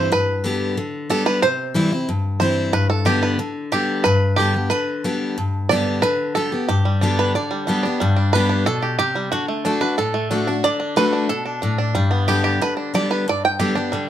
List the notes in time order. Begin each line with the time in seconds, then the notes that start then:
Already playing: C4 E4 C5
0.12 G2 B4
0.44 D3 G3 B3 G4
0.77 D3
1.09 D3 G3 B3 G4 A4
1.26 B4
1.42 C3 C5
1.74 E3 G3 C4 E4
1.92 C4 E4
2.09 G2
2.40 E3 G3 C4 E4 C5
2.73 G2 B4
2.90 A4
3.05 D3 G3 B3 G4
3.23 B4
3.39 D3
3.72 D3 G3 B3 G4
4.04 G2 B4
4.36 D3 G3 B3 G4
4.54 B3 G4
4.70 D3 B4
5.04 D3 G3 B3 G4
5.38 G2
5.69 D3 G3 B3 G4 D5
6.02 D3 B4
6.35 D3 G3 B3 G4 A4
6.52 B3 G4
6.69 G2 G4
6.85 G3
7.01 D3 G3 B3 D4 G4
7.19 B4
7.35 D3 D5
7.51 G3
7.67 D3 G3 B3 G4
7.83 B3 D4 G4
8.00 G2 G3
8.16 D4
8.33 D3 G3 B3 G4 B4
8.49 D4
8.66 B2 A4
8.82 G4
8.99 C3 G4
9.15 G3
9.32 D3 F#4
9.48 A3
9.65 D3 A3 D4 F#4
9.81 D4 F#4 B4
9.98 A2 A4
10.14 A3
10.31 D3 A3 D4 F#4
10.47 D4 F#4
10.64 D3 D5
10.80 D4
10.96 D3 A3 D4 F#4 B4
11.13 D4
11.29 B2 A4
11.45 D4
11.62 A2 D4
11.78 D4
11.95 G2 G3
12.11 B3
12.28 D3 G3 B3 G4
12.44 G4
12.62 D3 B4
12.77 D4
12.94 D3 G3 B3 G4 D5
13.11 B4
13.28 G2 D5
13.45 G5
13.59 D3 G3 B3 G4
13.75 B3 D4 G4
13.92 D3 G3